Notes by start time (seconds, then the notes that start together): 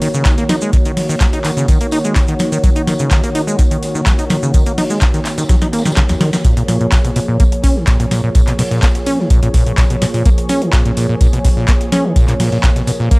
Already playing: D#3 A#3 F#4 C#5
0.02 D#3, snare, open hi-hat, tambourine
0.14 C#3, snare, maracas
0.25 D#3, kick, snare, clap, closed hi-hat, tambourine, maracas
0.38 A#3, snare, closed hi-hat, maracas
0.49 D#4, snare, open hi-hat, tambourine
0.61 G#3, maracas
0.73 D#3, kick, closed hi-hat, tambourine, maracas
0.85 D#3, closed hi-hat, maracas
0.97 snare, open hi-hat
1.09 D#3, closed hi-hat, maracas
1.20 F#3, kick, snare, clap, closed hi-hat, tambourine, maracas
1.33 D#4, snare, closed hi-hat, maracas
1.44 D#3, clap, open hi-hat, tambourine
1.57 C#3, snare, closed hi-hat, maracas
1.68 D#3, kick, closed hi-hat, tambourine, maracas
1.81 A#3, closed hi-hat, maracas
1.91 D#4, snare, open hi-hat, tambourine
2.05 G#3, closed hi-hat, maracas
2.16 D#3, kick, snare, clap, closed hi-hat, tambourine, maracas
2.27 D#3, closed hi-hat, maracas
2.39 snare, open hi-hat, tambourine
2.52 D#3, open hi-hat, maracas
2.64 F#3, kick, closed hi-hat, tambourine, maracas
2.75 D#4, closed hi-hat, maracas
2.87 D#3, snare, open hi-hat, tambourine
2.99 C#3, closed hi-hat, maracas
3.11 D#3, kick, snare, clap, closed hi-hat, tambourine, maracas
3.24 A#3, snare, closed hi-hat, maracas
3.35 D#4, open hi-hat, tambourine
3.47 G#3, maracas
3.59 D#3, kick, closed hi-hat, tambourine, maracas
3.71 D#3, closed hi-hat, maracas
3.83 snare, open hi-hat, tambourine
3.95 D#3, snare, maracas
4.06 F#3, kick, snare, clap, closed hi-hat, tambourine, maracas
4.18 D#4, snare, closed hi-hat, maracas
4.30 D#3, snare, open hi-hat, tambourine
4.43 C#3, maracas
4.54 D#3, kick, closed hi-hat, tambourine, maracas
4.66 A#3, closed hi-hat, maracas
4.78 D#4, snare, open hi-hat
4.90 G#3, closed hi-hat, maracas
5.01 D#3, kick, snare, clap, closed hi-hat, tambourine, maracas
5.14 D#3, snare, closed hi-hat, maracas
5.25 snare, clap, open hi-hat, tambourine
5.38 D#3, snare, closed hi-hat, tambourine, maracas
5.49 F#3, kick, snare, closed hi-hat, tambourine, maracas
5.62 D#4, snare, closed hi-hat, maracas
5.73 A#3, snare, open hi-hat, tambourine
5.78 snare, tambourine
5.85 D#3, snare, closed hi-hat, tambourine, maracas
5.92 snare, tambourine
5.97 C#3, kick, snare, clap, closed hi-hat, tambourine, maracas
6.09 D#2, snare, closed hi-hat, tambourine, maracas
6.21 D#3, snare, open hi-hat, tambourine
6.33 D#3, snare, open hi-hat, tambourine, maracas
6.45 A#2 F3 A#3 G#4 C#5, kick, closed hi-hat, tambourine
6.57 A#2, closed hi-hat
6.68 A#2, snare, open hi-hat, tambourine
6.81 A#2, closed hi-hat
6.92 A#2, kick, snare, clap, closed hi-hat, tambourine
7.05 B2, snare, closed hi-hat
7.16 B2, open hi-hat, tambourine
7.28 A#2
7.40 A#3, kick, closed hi-hat, tambourine
7.52 closed hi-hat
7.62 C#4, kick, snare, open hi-hat, tambourine
7.76 D#3, snare
7.87 A#2, kick, snare, clap, closed hi-hat, tambourine
7.99 A#2, snare, closed hi-hat
8.11 A#2, snare, open hi-hat, tambourine
8.24 A#2
8.35 A#2, kick, closed hi-hat, tambourine
8.47 B2, clap, closed hi-hat
8.58 B2, snare, open hi-hat
8.71 A#2, closed hi-hat
8.82 A#3, kick, snare, clap, closed hi-hat, tambourine
8.95 snare, closed hi-hat
9.06 C#4, open hi-hat, tambourine
9.19 D#3, snare
9.30 A#2, kick, closed hi-hat, tambourine
9.43 A#2, closed hi-hat
9.54 A#2, kick, snare, open hi-hat, tambourine
9.66 A#2, closed hi-hat
9.78 A#2, kick, snare, clap, closed hi-hat, tambourine
9.90 B2, closed hi-hat
10.01 B2, snare, open hi-hat, tambourine
10.14 A#2, open hi-hat
10.26 A#3, kick, closed hi-hat, tambourine
10.38 closed hi-hat
10.49 C#4, snare, open hi-hat, tambourine
10.62 D#3, closed hi-hat
10.73 A#2, kick, snare, clap, closed hi-hat, tambourine
10.86 A#2, snare, closed hi-hat
10.97 A#2, open hi-hat, tambourine
11.09 A#2
11.21 A#2, kick, closed hi-hat, tambourine
11.33 B2, closed hi-hat
11.44 B2, kick, snare, open hi-hat, tambourine
11.57 A#2, snare
11.67 A#3, kick, snare, clap, closed hi-hat, tambourine
11.80 snare, closed hi-hat
11.92 C#4, snare, open hi-hat, tambourine
12.05 D#3
12.16 A#2, kick, closed hi-hat, tambourine
12.28 A#2, clap, closed hi-hat
12.40 A#2, snare, open hi-hat
12.52 A#2, closed hi-hat
12.63 A#2, kick, snare, clap, closed hi-hat, tambourine
12.76 B2, snare, closed hi-hat
12.87 B2, open hi-hat, tambourine
13.00 A#2, snare
13.11 A#3, kick, closed hi-hat, tambourine